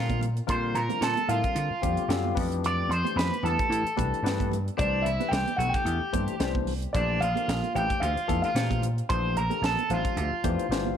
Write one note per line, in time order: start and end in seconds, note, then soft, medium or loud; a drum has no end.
0.00 0.39 A#2 medium
0.00 0.26 D3 medium
0.00 0.26 G3 medium
0.00 0.26 C4 medium
0.00 0.19 F4 medium
0.00 0.26 F4 medium
0.00 0.26 A#4 medium
0.00 0.18 F5 medium
0.10 kick medium
0.10 closed hi-hat soft
0.10 high conga medium
0.21 closed hi-hat medium
0.21 low conga medium
0.35 0.41 F4 soft
0.35 0.42 A#4 soft
0.35 closed hi-hat soft
0.47 0.71 A#2 medium
0.47 0.80 D3 medium
0.47 0.80 G3 medium
0.47 0.80 C4 medium
0.47 0.80 F4 medium
0.47 0.80 A#4 medium
0.47 0.77 C6 medium
0.47 kick loud
0.47 closed hi-hat medium
0.47 low conga medium
0.52 0.75 C5 medium
0.75 0.87 A#2 medium
0.75 1.02 A#4 medium
0.75 1.03 A#5 medium
0.75 closed hi-hat medium
0.88 1.21 D3 medium
0.88 1.21 G3 medium
0.88 1.20 C4 medium
0.88 1.20 F4 medium
0.88 1.21 A#4 medium
0.88 closed hi-hat soft
0.88 high conga medium
1.01 1.14 A#2 medium
1.01 1.28 A4 medium
1.01 1.30 A5 medium
1.01 snare medium
1.01 closed hi-hat medium
1.17 closed hi-hat soft
1.17 high conga medium
1.28 1.41 A2 medium
1.28 1.72 D3 medium
1.28 1.72 G3 medium
1.28 1.72 C4 medium
1.28 1.72 F4 medium
1.28 2.33 F4 medium
1.28 1.72 A#4 medium
1.28 2.32 F5 medium
1.28 closed hi-hat medium
1.28 low conga medium
1.44 kick medium
1.44 closed hi-hat soft
1.55 1.68 D3 loud
1.55 closed hi-hat medium
1.70 muted slap bass stroke soft
1.82 1.95 F2 medium
1.82 2.04 D3 medium
1.82 2.04 G3 medium
1.82 2.04 C4 medium
1.82 2.04 F4 medium
1.82 2.04 G4 loud
1.82 kick medium
1.82 closed hi-hat medium
1.82 high conga medium
1.96 muted slap bass stroke soft
1.96 closed hi-hat soft
2.08 2.31 F#2 medium
2.08 2.36 D3 medium
2.08 2.36 G3 medium
2.08 2.36 C4 medium
2.08 2.36 F4 medium
2.08 2.34 G4 medium
2.08 snare medium
2.08 closed hi-hat medium
2.24 high conga medium
2.35 2.82 F2 medium
2.35 2.89 E3 medium
2.35 2.89 A3 medium
2.35 2.90 D4 medium
2.35 2.90 G4 medium
2.35 2.90 B4 medium
2.35 kick medium
2.35 open hi-hat medium
2.35 low conga medium
2.52 closed hi-hat soft
2.64 2.91 D5 medium
2.64 2.90 D6 loud
2.64 closed hi-hat medium
2.64 low conga soft
2.89 3.02 F2 medium
2.89 3.16 C6 medium
2.89 closed hi-hat soft
2.94 3.17 C5 medium
3.03 3.35 E3 medium
3.03 3.36 A3 medium
3.03 3.35 D4 medium
3.03 3.35 G4 medium
3.03 3.36 C5 medium
3.03 closed hi-hat soft
3.03 high conga medium
3.16 3.28 F2 medium
3.16 3.43 B4 medium
3.16 3.45 B5 medium
3.16 snare medium
3.16 closed hi-hat medium
3.31 closed hi-hat soft
3.31 high conga medium
3.43 3.55 E2 medium
3.43 3.87 E3 medium
3.43 3.87 A3 medium
3.43 3.87 D4 medium
3.43 3.87 G4 medium
3.43 4.48 A4 medium
3.43 3.87 B4 medium
3.43 4.48 A5 medium
3.43 closed hi-hat medium
3.43 low conga medium
3.59 kick medium
3.59 closed hi-hat soft
3.69 3.82 A2 medium
3.69 closed hi-hat medium
3.83 muted slap bass stroke soft
3.83 closed hi-hat soft
3.96 4.10 C2 medium
3.96 4.19 E3 medium
3.96 4.19 A3 medium
3.96 4.19 D4 medium
3.96 4.19 G4 medium
3.96 4.19 B4 medium
3.96 kick medium
3.96 closed hi-hat medium
3.96 high conga medium
4.11 muted slap bass stroke soft
4.11 closed hi-hat soft
4.23 4.68 G2 medium
4.23 4.56 E3 medium
4.23 4.56 A3 medium
4.23 4.56 D4 medium
4.23 4.56 G4 medium
4.23 4.56 B4 medium
4.23 snare medium
4.23 closed hi-hat medium
4.39 kick medium
4.39 closed hi-hat soft
4.39 high conga medium
4.51 closed hi-hat medium
4.51 low conga medium
4.65 4.72 G4 soft
4.65 4.72 D5 soft
4.65 closed hi-hat soft
4.77 5.01 C2 medium
4.77 5.10 E3 medium
4.77 5.10 A3 medium
4.77 5.10 D4 medium
4.77 5.04 D4 medium
4.77 5.10 G4 medium
4.77 5.10 C5 medium
4.77 5.06 D5 medium
4.77 kick loud
4.77 closed hi-hat medium
4.77 low conga medium
5.02 5.16 C2 medium
5.02 5.30 E4 medium
5.02 5.32 E5 medium
5.02 closed hi-hat medium
5.06 low conga medium
5.20 5.51 E3 medium
5.20 5.51 A3 medium
5.20 5.51 D4 medium
5.20 5.51 G4 medium
5.20 5.51 B4 medium
5.20 closed hi-hat soft
5.20 high conga medium
5.28 5.44 C2 medium
5.28 5.57 G4 medium
5.28 5.58 G5 medium
5.33 snare medium
5.33 closed hi-hat medium
5.47 closed hi-hat soft
5.47 high conga medium
5.57 5.71 B1 medium
5.57 6.02 E3 medium
5.57 6.02 A3 medium
5.57 6.02 D4 medium
5.57 5.73 F#4 medium
5.57 6.02 G4 medium
5.57 6.02 A4 medium
5.57 5.73 F#5 medium
5.57 closed hi-hat medium
5.57 low conga medium
5.69 6.48 G5 medium
5.74 6.51 G4 medium
5.74 kick medium
5.74 closed hi-hat soft
5.85 5.98 E2 medium
5.85 closed hi-hat medium
6.00 muted slap bass stroke soft
6.13 6.25 G2 medium
6.13 6.34 E3 medium
6.13 6.34 A3 medium
6.13 6.34 D4 medium
6.13 6.34 G4 medium
6.13 6.35 C5 medium
6.13 kick medium
6.13 closed hi-hat medium
6.13 high conga medium
6.27 muted slap bass stroke soft
6.27 closed hi-hat soft
6.39 6.85 C2 medium
6.39 6.72 E3 medium
6.39 6.72 A3 medium
6.39 6.72 D4 medium
6.39 6.72 G4 medium
6.39 6.72 C5 medium
6.39 snare loud
6.39 closed hi-hat medium
6.55 kick medium
6.55 high conga medium
6.67 open hi-hat medium
6.67 low conga medium
6.81 6.87 G4 soft
6.81 6.87 D5 soft
6.81 closed hi-hat soft
6.93 7.17 A#1 medium
6.93 7.26 E3 medium
6.93 7.26 A3 medium
6.93 7.26 D4 medium
6.93 7.20 D4 medium
6.93 7.26 G4 medium
6.93 7.26 C5 medium
6.93 7.21 D5 medium
6.93 kick medium
6.93 closed hi-hat medium
6.93 low conga medium
7.21 7.33 A#1 medium
7.21 7.72 F4 medium
7.21 7.76 F5 loud
7.21 closed hi-hat medium
7.35 7.67 F3 medium
7.35 7.66 D4 medium
7.35 7.67 G4 medium
7.35 7.67 A4 medium
7.35 7.67 A#4 medium
7.35 closed hi-hat soft
7.35 high conga medium
7.48 7.60 A#1 medium
7.48 snare medium
7.48 closed hi-hat medium
7.63 closed hi-hat soft
7.63 high conga medium
7.75 7.87 A1 medium
7.75 8.18 E3 medium
7.75 8.18 A3 medium
7.75 8.18 D4 medium
7.75 8.18 G4 medium
7.75 8.01 G4 medium
7.75 8.18 C5 medium
7.75 8.03 G5 medium
7.75 closed hi-hat medium
7.75 low conga medium
7.90 kick medium
7.90 closed hi-hat soft
8.00 8.13 D2 medium
8.00 8.41 F4 medium
8.00 8.41 F5 medium
8.00 closed hi-hat medium
8.16 muted slap bass stroke soft
8.16 closed hi-hat soft
8.28 8.41 F2 medium
8.28 8.50 E3 medium
8.28 8.50 A3 medium
8.28 8.50 D4 medium
8.28 8.50 G4 medium
8.28 8.50 A4 medium
8.28 kick medium
8.28 closed hi-hat medium
8.28 high conga medium
8.42 8.81 F4 medium
8.42 8.79 F5 medium
8.42 muted slap bass stroke soft
8.42 closed hi-hat soft
8.55 9.00 A#2 medium
8.55 8.88 E3 medium
8.55 8.88 A3 medium
8.55 8.88 D4 medium
8.55 8.88 G4 medium
8.55 8.88 C5 medium
8.55 snare loud
8.55 closed hi-hat medium
8.70 kick medium
8.70 closed hi-hat soft
8.70 high conga medium
8.82 closed hi-hat medium
8.82 low conga medium
8.97 9.03 G4 soft
8.97 9.03 C5 soft
8.97 closed hi-hat soft
9.09 9.32 A#1 medium
9.09 9.41 E3 medium
9.09 9.41 A3 medium
9.09 9.41 D4 medium
9.09 9.41 G4 medium
9.09 9.41 C5 loud
9.09 9.35 C5 medium
9.09 9.34 C6 medium
9.09 kick loud
9.09 closed hi-hat medium
9.09 low conga medium
9.36 9.48 A#1 medium
9.36 9.63 A#4 medium
9.36 9.62 A#5 medium
9.36 closed hi-hat medium
9.50 9.82 E3 medium
9.50 9.82 D4 medium
9.50 9.82 G4 medium
9.50 9.82 A4 medium
9.50 9.82 A#4 medium
9.50 closed hi-hat soft
9.50 high conga medium
9.62 9.74 A#1 medium
9.62 9.91 A5 medium
9.62 snare loud
9.62 closed hi-hat medium
9.66 9.90 A4 medium
9.77 closed hi-hat soft
9.77 high conga medium
9.90 10.02 A1 medium
9.90 10.33 F3 medium
9.90 10.33 A3 medium
9.90 10.33 D4 medium
9.90 10.33 G4 medium
9.90 10.34 C5 medium
9.90 10.94 F5 medium
9.90 closed hi-hat medium
9.90 low conga medium
9.94 10.96 F4 medium
10.05 kick medium
10.05 closed hi-hat soft
10.17 10.29 D2 medium
10.17 closed hi-hat medium
10.31 muted slap bass stroke soft
10.44 10.56 F2 medium
10.44 10.65 E3 medium
10.44 10.66 A3 medium
10.44 10.66 D4 medium
10.44 10.66 G4 medium
10.44 10.66 C5 loud
10.44 kick medium
10.44 closed hi-hat medium
10.44 high conga medium
10.56 muted slap bass stroke soft
10.56 closed hi-hat soft
10.69 10.92 G1 medium
10.69 10.96 E3 medium
10.69 10.96 A3 medium
10.69 10.97 D4 medium
10.69 10.96 G4 medium
10.69 10.96 C5 medium
10.69 snare loud
10.69 closed hi-hat medium
10.85 high conga medium